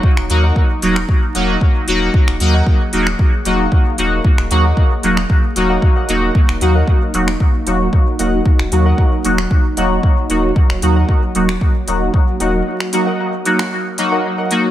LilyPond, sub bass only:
\new Staff \with { instrumentName = "Sub bass" } { \clef bass \time 4/4 \key ees \minor \tempo 4 = 114 r16 ees,,16 ees,8 r8 ees,,8 r8 ees,,8 r8 ees,,8 | r16 ees,,16 ees,8 r8 ees,,8 r8 ees,,8 r8 ees,,8 | r16 ees,,16 ees,8 r8 ees,,8 r8 ees,,8 r8 ees,,8 | r16 ees,,16 ees,8 r8 ees,,8 r8 ees,,8 r8 ees,,8 |
r16 ees,,16 ees,8 r8 ees,,8 r8 ees,,8 r8 ees,,8 | r16 ees,,16 ees,8 r8 ees,,8 r8 ees,,8 r8 ees,,8 | r1 | }